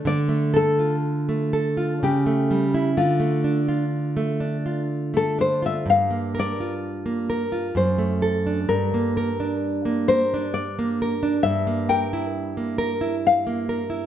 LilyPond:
<<
  \new Staff \with { instrumentName = "Nylon-string guitar" } { \time 3/4 \key d \minor \tempo 4 = 64 d''8 a'4. g'4 | f'2~ f'16 a'16 c''16 e''16 | f''8 d''4. c''4 | bes'4. c''8 d''4 |
e''8 g''4. f''4 | }
  \new Staff \with { instrumentName = "Nylon-string guitar" } { \time 3/4 \key d \minor d16 a16 a'16 f'8 a16 a'16 f'16 cis16 a16 g16 e'16 | d16 a16 d'16 f'8 a16 d'16 f'8 a16 d'16 f'16 | g,16 bes16 bes'16 f'8 bes16 bes'16 f'16 fis,16 a16 a'16 d'16 | g,16 bes16 bes'16 d'8 bes16 bes'16 d'8 bes16 bes'16 d'16 |
g,16 bes16 bes'16 e'8 bes16 bes'16 e'8 bes16 bes'16 e'16 | }
>>